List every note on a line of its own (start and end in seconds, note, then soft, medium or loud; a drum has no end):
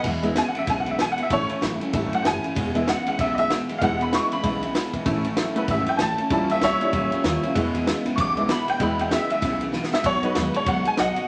0.03 0.23 E2 medium
0.03 0.40 E2 medium
0.03 0.22 E2 medium
0.03 0.23 B2 medium
0.03 0.22 B2 medium
0.03 0.23 E3 medium
0.03 0.23 G#3 loud
0.03 0.22 B3 loud
0.03 0.21 E4 loud
0.03 kick loud
0.03 crash loud
0.22 0.34 E2 medium
0.22 0.35 B2 medium
0.22 0.33 E3 soft
0.22 0.42 G#3 medium
0.22 0.34 G#3 medium
0.22 0.43 B3 medium
0.22 0.35 B3 medium
0.22 0.36 E4 medium
0.22 0.43 E4 medium
0.22 ride medium
0.35 0.53 E2 medium
0.35 0.53 C#3 medium
0.35 0.54 E3 medium
0.35 0.54 G#3 medium
0.35 0.54 B3 medium
0.35 0.53 E4 medium
0.35 0.47 G#5 medium
0.35 snare loud
0.35 ride medium
0.48 0.58 F#5 medium
0.54 0.66 E2 medium
0.54 0.67 C#3 medium
0.54 0.67 E3 soft
0.54 0.67 G#3 medium
0.54 0.68 B3 medium
0.54 0.67 E4 medium
0.54 muted upright bass stroke medium
0.54 ride medium
0.59 0.68 E5 medium
0.67 1.03 B1 medium
0.67 0.86 E2 medium
0.67 0.85 E2 medium
0.67 0.87 B2 medium
0.67 0.85 C#3 loud
0.67 0.87 E3 medium
0.67 0.87 G#3 medium
0.67 0.86 B3 medium
0.67 0.85 E4 medium
0.67 0.79 G#5 medium
0.67 kick loud
0.67 snare soft
0.67 ride medium
0.80 0.89 F#5 medium
0.86 0.98 E2 medium
0.86 0.98 C#3 medium
0.86 0.98 E3 medium
0.86 0.99 G#3 medium
0.86 0.99 B3 medium
0.86 0.99 E4 medium
0.86 ride medium
0.91 1.00 E5 medium
0.99 1.16 E2 medium
0.99 1.16 B2 loud
0.99 1.18 E3 medium
0.99 1.19 G#3 medium
0.99 1.18 B3 medium
0.99 1.18 E4 medium
0.99 1.11 G#5 medium
0.99 snare loud
0.99 ride medium
1.12 1.21 F#5 medium
1.18 1.29 E2 medium
1.18 1.30 B2 medium
1.18 1.29 E3 soft
1.18 1.31 G#3 soft
1.18 1.31 B3 medium
1.18 1.31 E4 medium
1.18 muted upright bass stroke medium
1.18 ride medium
1.23 1.32 E5 medium
1.30 1.44 A1 medium
1.30 1.49 A2 medium
1.30 1.48 A2 medium
1.30 1.50 E3 medium
1.30 1.48 E3 medium
1.30 1.53 A3 medium
1.30 1.50 A3 medium
1.30 1.53 C#4 medium
1.30 1.50 C#4 medium
1.30 1.54 E4 medium
1.30 1.48 E4 loud
1.30 1.50 C#5 loud
1.30 kick loud
1.30 ride medium
1.49 1.61 A2 medium
1.49 1.61 E3 medium
1.49 1.61 A3 soft
1.49 1.61 C#4 medium
1.49 1.62 E4 medium
1.49 ride medium
1.61 1.78 A1 loud
1.61 1.79 A2 medium
1.61 1.80 E3 medium
1.61 1.79 F#3 medium
1.61 1.81 A3 medium
1.61 1.80 C#4 medium
1.61 1.79 E4 medium
1.61 snare loud
1.61 ride medium
1.80 1.92 A2 medium
1.80 1.92 F#3 medium
1.80 1.92 A3 medium
1.80 1.92 C#4 medium
1.80 1.93 E4 medium
1.80 muted upright bass stroke medium
1.80 ride medium
1.93 2.09 G#1 medium
1.93 2.12 A2 medium
1.93 2.11 A2 medium
1.93 2.12 E3 medium
1.93 2.11 F#3 loud
1.93 2.12 A3 medium
1.93 2.10 A3 soft
1.93 2.12 C#4 medium
1.93 2.11 C#4 soft
1.93 2.10 E4 medium
1.93 2.11 E4 medium
1.93 kick loud
1.93 ride loud
2.11 2.24 A2 medium
2.11 2.24 F#3 medium
2.11 2.23 A3 soft
2.11 2.24 C#4 soft
2.11 2.24 E4 medium
2.11 2.26 F#5 loud
2.11 ride medium
2.22 2.41 F#1 medium
2.22 2.42 A2 medium
2.22 2.43 E3 medium
2.22 2.42 E3 loud
2.22 2.43 A3 medium
2.22 2.43 C#4 medium
2.22 2.43 E4 medium
2.22 2.25 G5 medium
2.22 snare loud
2.22 ride medium
2.27 2.87 G#5 medium
2.44 2.55 A2 medium
2.44 2.55 E3 medium
2.44 2.56 A3 soft
2.44 2.56 C#4 soft
2.44 2.55 E4 medium
2.44 ride medium
2.55 2.91 E1 medium
2.55 2.75 E2 medium
2.55 2.73 E2 medium
2.55 2.75 B2 medium
2.55 2.73 B2 medium
2.55 2.75 E3 loud
2.55 2.75 G#3 medium
2.55 2.74 B3 medium
2.55 2.73 E4 medium
2.55 kick loud
2.55 ride medium
2.74 2.86 E2 medium
2.74 2.86 B2 medium
2.74 2.85 E3 medium
2.74 2.94 G#3 medium
2.74 2.86 G#3 medium
2.74 2.87 B3 medium
2.74 2.94 B3 medium
2.74 2.87 E4 medium
2.74 2.94 E4 medium
2.74 ride medium
2.87 3.04 E2 medium
2.87 3.05 C#3 medium
2.87 3.06 E3 medium
2.87 3.06 G#3 medium
2.87 3.07 B3 medium
2.87 3.06 E4 medium
2.87 3.07 F#5 medium
2.87 snare loud
2.87 ride medium
3.06 3.18 E2 medium
3.06 3.18 C#3 medium
3.06 3.18 E3 soft
3.06 3.18 G#3 soft
3.06 3.18 B3 medium
3.06 3.19 E4 medium
3.06 3.19 F#5 medium
3.06 muted upright bass stroke medium
3.06 ride medium
3.18 3.54 B1 medium
3.18 3.37 E2 medium
3.18 3.36 E2 medium
3.18 3.37 B2 medium
3.18 3.36 C#3 medium
3.18 3.38 E3 medium
3.18 3.37 G#3 medium
3.18 3.37 B3 medium
3.18 3.36 E4 medium
3.18 3.37 E5 medium
3.18 kick loud
3.18 ride medium
3.35 3.49 E2 medium
3.35 3.49 C#3 medium
3.35 3.49 G#3 medium
3.35 3.50 B3 soft
3.35 3.50 E4 medium
3.35 3.36 D#5 medium
3.35 ride medium
3.39 3.49 E3 soft
3.39 3.50 E5 loud
3.50 3.67 E2 medium
3.50 3.67 B2 medium
3.50 3.69 E3 medium
3.50 3.69 G#3 medium
3.50 3.68 B3 medium
3.50 3.68 E4 medium
3.50 snare loud
3.50 ride medium
3.69 3.80 E2 medium
3.69 3.80 B2 medium
3.69 3.81 E3 medium
3.69 3.81 G#3 medium
3.69 3.82 B3 medium
3.69 3.81 E4 medium
3.69 muted upright bass stroke medium
3.69 ride medium
3.78 4.16 E1 medium
3.78 3.98 E2 medium
3.78 4.00 E2 medium
3.78 3.98 B2 medium
3.78 4.01 B2 medium
3.78 4.01 E3 medium
3.78 4.42 G#3 medium
3.78 4.42 B3 medium
3.78 4.43 E4 medium
3.78 3.81 F5 medium
3.78 kick loud
3.78 ride medium
3.83 4.01 G#3 medium
3.83 4.00 B3 medium
3.83 4.00 E4 loud
3.83 4.01 F#5 loud
4.00 4.11 E2 medium
4.00 4.12 B2 medium
4.00 4.11 E3 soft
4.00 4.12 G#3 soft
4.00 4.13 B3 medium
4.00 4.13 E4 medium
4.00 4.13 B5 medium
4.00 ride medium
4.12 4.30 E2 medium
4.12 4.30 C#3 medium
4.12 4.31 E3 medium
4.12 4.32 G#3 medium
4.12 4.31 B3 medium
4.12 4.30 E4 medium
4.12 4.32 C#6 medium
4.12 snare loud
4.12 ride medium
4.31 4.42 E2 medium
4.31 4.43 C#3 medium
4.31 4.43 E3 soft
4.31 4.43 G#3 medium
4.31 4.43 B3 medium
4.31 4.44 E4 medium
4.31 5.23 B5 loud
4.31 muted upright bass stroke medium
4.31 ride medium
4.43 4.79 B1 medium
4.43 4.62 E2 medium
4.43 4.61 E2 medium
4.43 4.63 B2 medium
4.43 4.61 C#3 medium
4.43 4.63 E3 medium
4.43 4.60 G#3 soft
4.43 4.62 G#3 medium
4.43 4.61 B3 soft
4.43 4.62 B3 medium
4.43 4.61 E4 medium
4.43 kick loud
4.43 ride medium
4.62 4.74 E2 medium
4.62 4.74 C#3 medium
4.62 4.73 E3 soft
4.62 4.74 G#3 medium
4.62 4.74 B3 medium
4.62 4.75 E4 medium
4.62 ride medium
4.74 4.92 E2 medium
4.74 4.92 B2 loud
4.74 4.93 E3 medium
4.74 4.93 G#3 medium
4.74 4.92 B3 medium
4.74 4.92 E4 medium
4.74 snare loud
4.74 ride medium
4.93 5.05 E2 medium
4.93 5.05 B2 medium
4.93 5.05 E3 medium
4.93 5.06 G#3 medium
4.93 5.06 B3 medium
4.93 5.06 E4 medium
4.93 kick medium
4.93 ride medium
5.05 5.41 A1 medium
5.05 5.25 A2 medium
5.05 5.23 A2 medium
5.05 5.25 E3 loud
5.05 5.23 E3 medium
5.05 5.53 A3 medium
5.05 5.25 A3 medium
5.05 5.54 C#4 medium
5.05 5.25 C#4 loud
5.05 5.54 E4 medium
5.05 5.24 E4 loud
5.05 kick loud
5.05 ride medium
5.24 5.36 A2 medium
5.24 5.36 E3 medium
5.24 5.36 A3 soft
5.24 5.37 C#4 soft
5.24 5.37 E4 medium
5.24 ride medium
5.37 5.54 A2 medium
5.37 5.56 E3 medium
5.37 5.55 F#3 medium
5.37 5.56 A3 medium
5.37 5.57 C#4 medium
5.37 5.56 E4 medium
5.37 snare loud
5.37 ride medium
5.55 5.67 A2 medium
5.55 5.68 F#3 medium
5.55 5.67 A3 medium
5.55 5.69 A3 soft
5.55 5.67 C#4 soft
5.55 5.69 C#4 soft
5.55 5.67 E4 medium
5.55 5.69 E4 medium
5.55 5.69 B4 medium
5.55 muted upright bass stroke medium
5.55 ride medium
5.68 5.84 G#1 medium
5.68 5.86 A2 medium
5.68 5.88 A2 medium
5.68 5.88 E3 medium
5.68 5.86 F#3 medium
5.68 5.88 A3 medium
5.68 5.87 C#4 medium
5.68 5.85 E4 medium
5.68 5.88 E5 medium
5.68 kick loud
5.68 ride medium
5.86 5.98 A2 medium
5.86 5.99 F#3 medium
5.86 5.99 A3 soft
5.86 5.99 C#4 soft
5.86 5.99 E4 medium
5.86 6.00 G5 medium
5.86 muted upright bass stroke medium
5.86 ride medium
5.97 6.16 A1 medium
5.97 6.17 A2 medium
5.97 6.18 E3 medium
5.97 6.17 E3 medium
5.97 6.19 A3 medium
5.97 6.19 C#4 medium
5.97 5.99 G#5 medium
5.97 snare loud
5.97 ride medium
6.01 6.17 E4 medium
6.01 6.31 A5 loud
6.18 6.29 A2 medium
6.18 6.30 E3 medium
6.18 6.31 A3 soft
6.18 6.30 C#4 soft
6.18 6.31 E4 medium
6.18 muted upright bass stroke medium
6.18 ride medium
6.30 6.44 A#1 medium
6.30 6.49 A#2 medium
6.30 6.48 A#2 medium
6.30 6.50 E3 medium
6.30 6.48 F3 medium
6.30 6.53 G3 medium
6.30 6.50 G3 loud
6.30 6.53 C#4 medium
6.30 6.49 C#4 medium
6.30 6.54 E4 medium
6.30 6.48 E4 loud
6.30 6.50 A5 medium
6.30 kick loud
6.30 ride medium
6.49 6.61 A#2 medium
6.49 6.61 F3 medium
6.49 6.61 G3 soft
6.49 6.62 C#4 soft
6.49 6.62 E4 medium
6.49 6.62 E5 loud
6.49 ride medium
6.61 6.78 C2 loud
6.61 6.79 A#2 medium
6.61 6.81 E3 medium
6.61 6.81 G3 medium
6.61 6.79 G3 medium
6.61 6.80 C#4 medium
6.61 6.79 E4 medium
6.61 7.52 C#5 loud
6.61 7.54 E5 loud
6.61 snare loud
6.61 ride medium
6.80 6.92 A#2 medium
6.80 6.92 G3 soft
6.80 6.92 G3 loud
6.80 6.92 G3 soft
6.80 6.93 C#4 medium
6.80 6.92 C#4 medium
6.80 6.93 E4 medium
6.80 6.92 E4 medium
6.80 muted upright bass stroke medium
6.80 ride medium
6.92 7.09 C#2 medium
6.92 7.12 A#2 medium
6.92 7.10 A#2 medium
6.92 7.12 E3 medium
6.92 7.12 G3 medium
6.92 7.10 G3 medium
6.92 7.12 C#4 medium
6.92 7.11 E4 medium
6.92 kick loud
6.92 ride medium
7.12 7.23 A#2 medium
7.12 7.23 G3 medium
7.12 7.24 G3 medium
7.12 7.24 C#4 medium
7.12 7.24 E4 medium
7.12 muted upright bass stroke medium
7.12 ride medium
7.24 7.40 D#2 medium
7.24 7.41 A#2 medium
7.24 7.43 E3 medium
7.24 7.42 F3 medium
7.24 7.43 G3 medium
7.24 7.43 C#4 medium
7.24 7.41 E4 medium
7.24 snare loud
7.24 ride medium
7.43 7.54 A#2 medium
7.43 7.55 F3 medium
7.43 7.56 G3 medium
7.43 7.56 C#4 medium
7.43 7.55 E4 medium
7.43 ride medium
7.55 7.72 E2 medium
7.55 7.90 E2 medium
7.55 7.74 E2 loud
7.55 7.72 B2 medium
7.55 7.74 B2 medium
7.55 7.75 E3 medium
7.55 8.03 G#3 medium
7.55 7.75 G#3 medium
7.55 8.03 B3 medium
7.55 7.73 B3 loud
7.55 8.03 E4 medium
7.55 7.73 E4 loud
7.55 kick loud
7.55 ride medium
7.74 7.85 E2 medium
7.74 7.86 B2 medium
7.74 7.85 E3 soft
7.74 7.85 G#3 medium
7.74 7.86 B3 medium
7.74 7.86 E4 medium
7.74 ride medium
7.86 8.04 E2 medium
7.86 8.04 C#3 medium
7.86 8.05 E3 medium
7.86 8.05 G#3 medium
7.86 8.05 B3 medium
7.86 8.04 E4 medium
7.86 snare loud
7.86 ride medium
8.05 8.17 E2 medium
8.05 8.17 C#3 medium
8.05 8.17 E3 medium
8.05 8.17 G#3 medium
8.05 8.17 B3 medium
8.05 8.18 E4 medium
8.05 muted upright bass stroke medium
8.05 ride medium
8.16 8.53 B1 medium
8.16 8.36 E2 medium
8.16 8.35 E2 medium
8.16 8.37 B2 medium
8.16 8.35 C#3 medium
8.16 8.37 E3 medium
8.16 8.36 G#3 medium
8.16 8.35 B3 medium
8.16 8.34 E4 medium
8.16 8.18 C#6 medium
8.16 kick loud
8.16 snare soft
8.16 ride loud
8.20 8.49 D6 loud
8.36 8.48 E2 medium
8.36 8.48 C#3 medium
8.36 8.47 E3 soft
8.36 8.48 G#3 soft
8.36 8.48 B3 medium
8.36 8.48 B3 soft
8.36 8.48 E4 soft
8.36 8.48 E4 medium
8.36 ride medium
8.48 8.66 E2 medium
8.48 8.66 B2 loud
8.48 8.67 E3 medium
8.48 8.68 G#3 medium
8.48 8.67 B3 medium
8.48 8.66 E4 medium
8.48 8.68 B5 loud
8.48 snare loud
8.48 ride medium
8.68 8.79 E2 medium
8.68 8.79 B2 medium
8.68 8.80 E3 soft
8.68 8.80 G#3 medium
8.68 8.80 B3 medium
8.68 8.80 E4 soft
8.68 8.81 G5 loud
8.68 muted upright bass stroke medium
8.68 ride medium
8.80 9.15 E2 medium
8.80 8.97 E2 medium
8.80 8.99 E2 medium
8.80 8.97 B2 medium
8.80 8.99 B2 medium
8.80 8.99 E3 medium
8.80 9.28 G#3 medium
8.80 9.00 G#3 medium
8.80 9.28 B3 medium
8.80 8.99 B3 medium
8.80 9.28 E4 medium
8.80 8.98 E4 loud
8.80 9.00 B5 medium
8.80 kick loud
8.80 ride medium
8.99 9.10 E2 medium
8.99 9.10 B2 medium
8.99 9.09 E3 soft
8.99 9.10 G#3 soft
8.99 9.11 B3 medium
8.99 9.11 E4 medium
8.99 9.12 G5 medium
8.99 ride medium
9.10 9.28 E2 medium
9.10 9.28 C#3 medium
9.10 9.30 E3 medium
9.10 9.29 G#3 medium
9.10 9.29 B3 medium
9.10 9.28 E4 medium
9.10 9.30 E5 medium
9.10 snare loud
9.10 ride medium
9.29 9.41 E2 medium
9.29 9.41 C#3 medium
9.29 9.40 E3 soft
9.29 9.41 G#3 soft
9.29 9.41 B3 soft
9.29 9.41 E4 medium
9.29 9.61 E5 medium
9.29 muted upright bass stroke medium
9.29 ride medium
9.41 9.77 B1 medium
9.41 9.60 E2 medium
9.41 9.59 E2 medium
9.41 9.61 B2 medium
9.41 9.60 C#3 loud
9.41 9.61 E3 medium
9.41 9.60 G#3 medium
9.41 9.59 B3 medium
9.41 9.58 E4 medium
9.41 kick loud
9.41 snare soft
9.41 ride medium
9.60 9.72 E2 medium
9.60 9.72 C#3 medium
9.60 9.71 E3 soft
9.60 9.72 G#3 medium
9.60 9.73 B3 medium
9.60 9.73 E4 soft
9.60 ride medium
9.72 9.90 E2 medium
9.72 9.91 B2 medium
9.72 9.91 E3 medium
9.72 9.91 G#3 medium
9.72 9.90 B3 medium
9.72 9.90 E4 medium
9.72 snare medium
9.84 snare medium
9.91 10.03 E2 medium
9.91 10.03 B2 medium
9.91 10.03 E3 soft
9.91 10.03 G#3 medium
9.91 10.03 B3 medium
9.91 10.04 E4 medium
9.91 10.05 E5 medium
9.91 muted upright bass stroke medium
9.91 snare medium
10.03 10.17 B1 medium
10.03 10.22 B2 medium
10.03 10.21 B2 medium
10.03 10.23 F#3 medium
10.03 10.21 F#3 medium
10.03 10.23 B3 medium
10.03 10.22 D#4 loud
10.03 10.21 F#4 medium
10.03 10.23 C#5 loud
10.03 kick loud
10.03 ride loud
10.22 10.34 B2 medium
10.22 10.42 F#3 medium
10.22 10.34 F#3 medium
10.22 10.42 B3 medium
10.22 10.34 B3 soft
10.22 10.35 D#4 medium
10.22 10.42 D#4 medium
10.22 10.35 F#4 medium
10.22 10.54 B4 medium
10.22 muted upright bass stroke medium
10.22 ride medium
10.35 10.52 D#2 medium
10.35 10.52 B2 medium
10.35 10.54 F#3 medium
10.35 10.53 G#3 medium
10.35 10.54 B3 medium
10.35 10.53 D#4 medium
10.35 10.52 F#4 medium
10.35 snare loud
10.35 ride medium
10.53 10.65 B2 medium
10.53 10.65 G#3 medium
10.53 10.66 B3 soft
10.53 10.66 D#4 medium
10.53 10.66 F#4 medium
10.53 10.67 C#5 medium
10.53 ride medium
10.66 10.82 C#2 medium
10.66 10.85 B2 medium
10.66 10.83 B2 medium
10.66 10.85 F#3 medium
10.66 10.84 G#3 medium
10.66 10.86 B3 medium
10.66 10.85 D#4 medium
10.66 10.84 F#4 medium
10.66 10.86 F#5 medium
10.66 kick loud
10.66 ride medium
10.85 10.97 B2 medium
10.85 10.97 G#3 medium
10.85 10.97 B3 soft
10.85 10.98 D#4 soft
10.85 10.98 F#4 soft
10.85 10.98 G#5 medium
10.85 muted upright bass stroke medium
10.85 ride medium
10.97 11.14 B1 medium
10.97 11.15 B2 medium
10.97 11.16 F#3 medium
10.97 11.15 F#3 medium
10.97 11.17 B3 medium
10.97 11.16 D#4 medium
10.97 11.15 F#4 medium
10.97 11.27 D#5 loud
10.97 11.28 F#5 loud
10.97 snare loud
10.97 ride medium
11.16 11.27 B2 medium
11.16 11.28 F#3 medium
11.16 11.28 B3 soft
11.16 11.28 D#4 soft
11.16 11.28 F#4 medium
11.16 muted upright bass stroke medium
11.16 ride medium